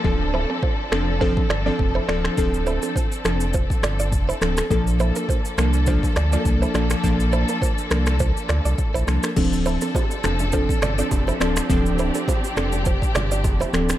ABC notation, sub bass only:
X:1
M:4/4
L:1/16
Q:"Swing 16ths" 1/4=103
K:Dm
V:1 name="Sub bass" clef=bass
D,,,4 z2 F,,,4 G,,,2 F,,,2 D,,,2 | D,,,4 z2 F,,,4 G,,,2 F,,,2 D,,,2 | B,,,4 z2 C,,4 D,,2 C,,2 B,,,2 | B,,,4 z2 C,,4 D,, C,, z B,,, C,, z |
D,,,4 z2 F,,,4 G,,,2 F,,,2 D,,,2 | D,,,4 z2 F,,,4 G,,,2 F,,,2 D,,,2 |]